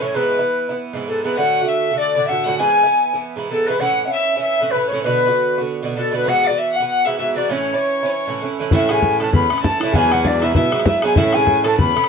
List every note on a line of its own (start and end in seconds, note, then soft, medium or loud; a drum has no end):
0.00 0.14 A2 medium
0.00 0.14 E3 medium
0.00 0.15 C#4 medium
0.00 0.15 E4 medium
0.00 0.13 C#5 medium
0.00 0.17 C#5 medium
0.14 0.38 G#2 medium
0.14 0.39 E3 medium
0.14 0.39 B3 medium
0.14 0.38 E4 medium
0.14 0.71 B4 medium
0.14 0.76 B4 loud
0.39 0.70 E3 soft
0.39 0.70 B3 soft
0.39 0.68 E4 medium
0.69 0.94 E3 soft
0.69 0.94 B3 soft
0.69 0.93 E4 soft
0.93 1.06 G#2 medium
0.93 1.07 E3 medium
0.93 1.08 B3 medium
0.93 1.08 E4 medium
1.07 1.23 G#2 soft
1.07 1.24 E3 medium
1.07 1.24 B3 medium
1.07 1.25 E4 soft
1.07 1.22 A4 medium
1.07 1.26 A4 medium
1.24 1.37 G#2 medium
1.24 1.38 E3 medium
1.24 1.38 B3 medium
1.24 1.38 E4 medium
1.24 1.39 B4 medium
1.24 1.38 B4 medium
1.36 1.61 A2 medium
1.36 1.61 D3 medium
1.36 1.61 A3 medium
1.36 1.60 F#4 medium
1.36 1.70 F#5 medium
1.36 1.64 F#5 loud
1.61 1.93 D3 soft
1.61 1.92 A3 medium
1.61 1.90 F#4 soft
1.61 1.99 E5 medium
1.68 1.98 E5 medium
1.91 2.16 D3 soft
1.91 2.16 A3 soft
1.91 2.15 F#4 soft
1.97 2.27 D5 medium
1.97 2.14 D5 medium
2.15 2.27 A2 medium
2.15 2.28 D3 medium
2.15 2.30 A3 soft
2.15 2.30 F#4 medium
2.15 2.27 D5 medium
2.26 2.45 A2 soft
2.26 2.45 D3 soft
2.26 2.28 E5 medium
2.26 2.45 E5 medium
2.26 2.44 F#5 medium
2.31 2.46 A3 soft
2.31 2.47 F#4 medium
2.44 2.59 A2 medium
2.44 2.59 D3 medium
2.44 2.59 A3 medium
2.44 2.60 F#5 medium
2.44 2.57 F#5 medium
2.48 2.60 F#4 medium
2.58 2.83 G#2 medium
2.58 2.83 E3 medium
2.58 2.83 B3 medium
2.58 2.82 E4 medium
2.58 3.16 G#5 loud
2.58 3.20 G#5 loud
2.83 3.15 E3 soft
2.83 3.14 B3 soft
2.83 3.12 E4 soft
3.13 3.36 E3 soft
3.13 3.37 B3 soft
3.13 3.37 E4 soft
3.36 3.49 G#2 medium
3.36 3.49 E3 medium
3.36 3.50 B3 medium
3.36 3.51 E4 medium
3.50 3.66 G#2 soft
3.50 3.68 E3 medium
3.50 3.68 B3 medium
3.50 3.69 E4 soft
3.50 3.70 A4 medium
3.50 3.68 A4 medium
3.66 3.79 G#2 medium
3.66 3.80 E3 medium
3.66 3.81 B3 medium
3.66 3.81 E4 medium
3.66 3.82 B4 medium
3.79 4.04 A2 medium
3.79 4.05 E3 medium
3.79 4.05 C#4 medium
3.79 4.04 E4 medium
3.79 4.05 F#5 loud
3.79 4.05 F#5 medium
4.06 4.37 E3 soft
4.06 4.36 C#4 soft
4.06 4.35 E4 soft
4.06 4.13 F#5 medium
4.11 4.38 E5 loud
4.11 4.41 E5 medium
4.36 4.61 E3 soft
4.36 4.60 C#4 soft
4.36 4.60 E4 soft
4.36 4.72 E5 loud
4.42 4.71 E5 medium
4.61 4.73 A2 medium
4.61 4.74 E3 medium
4.61 4.74 C#4 medium
4.61 4.75 E4 medium
4.71 4.91 A2 soft
4.71 4.89 B4 medium
4.71 4.91 B4 medium
4.75 4.91 E3 soft
4.75 4.92 C#4 medium
4.75 4.92 E4 medium
4.87 5.02 C#5 medium
4.87 5.03 C#5 medium
4.92 5.04 A2 medium
4.92 5.05 E3 medium
4.92 5.05 C#4 medium
4.92 5.06 E4 medium
5.02 5.28 B2 medium
5.02 5.28 D3 medium
5.02 5.28 B3 medium
5.02 5.64 B4 medium
5.02 5.61 B4 loud
5.06 5.26 F#4 medium
5.27 5.59 D3 soft
5.27 5.59 B3 soft
5.27 5.57 F#4 soft
5.58 5.82 D3 soft
5.58 5.83 B3 soft
5.58 5.82 F#4 medium
5.82 5.94 B2 medium
5.82 5.95 D3 medium
5.82 5.96 B3 medium
5.82 5.97 F#4 medium
5.96 6.10 B2 soft
5.96 6.12 D3 medium
5.96 6.12 B3 soft
5.96 6.13 F#4 medium
5.96 6.12 A4 medium
5.96 6.13 A4 medium
6.11 6.26 B2 medium
6.11 6.26 D3 medium
6.11 6.27 B3 medium
6.11 6.27 F#4 medium
6.15 6.25 B4 medium
6.15 6.30 B4 loud
6.26 6.50 G#2 medium
6.26 6.51 E3 medium
6.26 6.49 B3 medium
6.26 6.48 F#4 medium
6.26 6.45 F#5 medium
6.26 6.48 F#5 loud
6.44 6.59 D5 medium
6.44 6.60 D5 loud
6.49 6.82 E3 soft
6.49 6.81 B3 soft
6.49 6.79 F#4 soft
6.58 6.72 E5 medium
6.58 6.77 E5 loud
6.72 6.86 F#5 medium
6.72 6.88 F#5 medium
6.80 7.05 E3 soft
6.80 7.05 B3 soft
6.80 7.05 F#4 soft
6.86 7.07 F#5 medium
6.86 7.08 F#5 loud
7.05 7.17 G#2 medium
7.05 7.18 E3 medium
7.05 7.19 B3 medium
7.05 7.20 F#4 medium
7.05 7.17 E5 medium
7.05 7.19 E5 medium
7.18 7.34 G#2 medium
7.18 7.35 E3 medium
7.18 7.36 B3 soft
7.18 7.37 F#4 medium
7.18 7.34 E5 medium
7.18 7.38 E5 medium
7.35 7.49 G#2 medium
7.35 7.49 E3 medium
7.35 7.50 B3 medium
7.35 7.50 F#4 medium
7.35 7.49 D5 medium
7.35 7.51 D5 medium
7.48 7.73 A2 medium
7.48 7.74 E3 medium
7.48 7.74 C#4 medium
7.48 7.72 E4 medium
7.48 7.76 C#5 medium
7.48 8.41 C#5 loud
7.73 8.06 E3 soft
7.73 8.03 C#4 soft
7.73 8.02 E4 soft
7.73 7.80 D5 soft
7.78 8.07 C#5 medium
8.03 8.27 E3 soft
8.03 8.28 C#4 soft
8.03 8.27 E4 soft
8.03 8.12 B4 soft
8.10 8.41 C#5 medium
8.27 8.40 A2 medium
8.27 8.42 E3 medium
8.27 8.42 C#4 medium
8.27 8.42 E4 medium
8.41 8.58 A2 soft
8.41 8.59 E3 soft
8.41 8.60 C#4 medium
8.41 8.60 E4 medium
8.60 8.71 A2 medium
8.60 8.73 E3 medium
8.60 8.73 C#4 medium
8.60 8.73 E4 medium
8.71 9.29 A2 loud
8.71 8.88 A2 medium
8.71 8.90 E3 medium
8.71 8.90 C#4 medium
8.71 8.90 E4 medium
8.71 8.92 E5 medium
8.71 8.92 E5 loud
8.71 bodhran medium
8.75 8.91 E4 medium
8.89 9.19 A2 medium
8.89 9.21 E3 medium
8.89 9.21 C#4 medium
8.89 9.23 E4 medium
8.89 9.18 G#4 medium
8.89 9.22 G#5 medium
8.89 9.20 G#5 loud
8.89 bodhran medium
9.02 bodhran medium
9.20 9.48 A2 medium
9.20 9.50 E3 medium
9.20 9.51 C#4 medium
9.20 9.52 E4 medium
9.20 9.33 A4 medium
9.20 9.32 A5 medium
9.20 9.33 A5 loud
9.20 bodhran soft
9.32 9.48 E2 loud
9.32 9.63 B4 medium
9.32 9.61 B5 medium
9.32 9.62 B5 loud
9.32 bodhran medium
9.49 9.62 A2 medium
9.49 9.63 E3 medium
9.49 9.64 C#4 medium
9.49 9.64 E4 medium
9.49 bodhran medium
9.58 bodhran soft
9.62 9.80 A2 soft
9.62 9.81 E3 medium
9.62 9.81 C#4 medium
9.62 9.82 E4 medium
9.62 9.80 A4 medium
9.62 9.96 A5 medium
9.62 9.81 A5 medium
9.62 bodhran medium
9.80 9.94 A2 medium
9.80 9.95 E3 medium
9.80 9.94 E4 medium
9.80 9.97 E5 medium
9.80 bodhran medium
9.84 9.96 C#4 medium
9.84 9.96 E4 medium
9.92 10.51 E2 loud
9.92 10.09 G#2 medium
9.92 10.11 F#3 medium
9.92 10.09 G#4 medium
9.92 10.26 G#5 medium
9.92 10.14 G#5 loud
9.92 bodhran medium
9.96 10.12 B3 medium
9.96 10.13 E4 medium
10.11 10.40 G#2 medium
10.11 10.41 F#3 medium
10.11 10.42 B3 medium
10.11 10.43 E4 medium
10.11 10.24 F#4 medium
10.11 10.29 F#5 loud
10.11 bodhran medium
10.24 10.42 D4 medium
10.24 10.41 D5 medium
10.24 10.46 D5 medium
10.24 bodhran medium
10.41 10.70 G#2 medium
10.41 10.72 F#3 medium
10.41 10.72 B3 medium
10.41 10.54 E4 medium
10.41 10.74 E4 medium
10.41 10.53 E5 medium
10.41 10.56 E5 medium
10.41 bodhran soft
10.54 10.71 B2 medium
10.54 10.72 E4 medium
10.54 10.83 E5 medium
10.54 10.85 E5 medium
10.54 bodhran medium
10.71 10.84 G#2 medium
10.71 10.85 F#3 medium
10.71 10.86 B3 medium
10.71 10.86 E4 medium
10.71 10.86 F#4 medium
10.71 bodhran medium
10.80 bodhran medium
10.85 11.01 G#2 medium
10.85 11.03 F#3 soft
10.85 11.03 B3 medium
10.85 11.02 E4 medium
10.85 11.04 E4 medium
10.85 11.02 E5 medium
10.85 11.03 E5 medium
10.85 bodhran loud
11.02 11.16 G#2 medium
11.02 11.17 F#3 medium
11.02 11.18 B3 medium
11.02 11.17 E4 medium
11.02 11.17 G#4 medium
11.02 11.19 G#5 medium
11.02 11.16 G#5 medium
11.02 bodhran medium
11.16 11.33 A2 medium
11.16 11.74 A2 loud
11.16 11.34 E3 medium
11.16 11.34 C#4 medium
11.16 11.35 E4 medium
11.16 11.36 E5 loud
11.16 11.35 E5 medium
11.16 bodhran medium
11.33 11.62 A2 medium
11.33 11.64 E3 medium
11.33 11.64 C#4 medium
11.33 11.65 G#4 medium
11.33 11.66 G#5 medium
11.33 11.65 G#5 loud
11.33 bodhran medium
11.37 11.66 E4 medium
11.47 bodhran medium
11.64 11.94 A2 medium
11.64 11.95 E3 medium
11.64 11.96 C#4 medium
11.64 11.96 E4 medium
11.64 11.78 A4 medium
11.64 11.77 A5 medium
11.64 11.78 A5 loud
11.64 bodhran medium
11.78 11.94 E2 medium
11.78 12.07 B4 medium
11.78 12.09 B5 loud
11.78 bodhran medium
11.95 12.07 A2 medium
11.95 12.08 E3 medium
11.95 12.09 C#4 medium
11.95 12.09 E4 medium
11.95 bodhran medium
12.04 bodhran medium